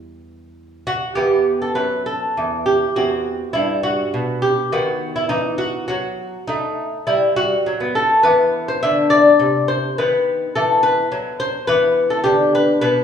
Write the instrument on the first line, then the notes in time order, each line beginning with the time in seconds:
lute
Already playing: E2 E3 G3 E4
0.87 F#4
1.15 E2 B3 G4
1.62 A4
1.75 F#2 B4
2.06 A4
2.37 E2
2.66 G4
2.96 E2 C4 F#4
3.53 G2 E4
3.83 F#4
4.14 B2
4.42 G4
4.72 D#3 B3 F#4
5.16 E4
5.29 E3 D#4
5.58 F#4
5.88 F#3 F#4
6.47 A3 D#4
7.07 G3 E4
7.36 F#4
7.66 F#3
7.80 B3
7.95 A4
8.23 E3 B3 B4
8.68 C5
8.83 D3 E5
9.10 D5
9.39 C3
9.68 C5
9.98 D#3 B3 B4
10.55 E3 A4
10.83 B4
11.12 F#3
11.40 C5
11.67 E3 B3 B4
12.10 A4
12.24 D3 G4
12.55 B4
12.81 B2 B4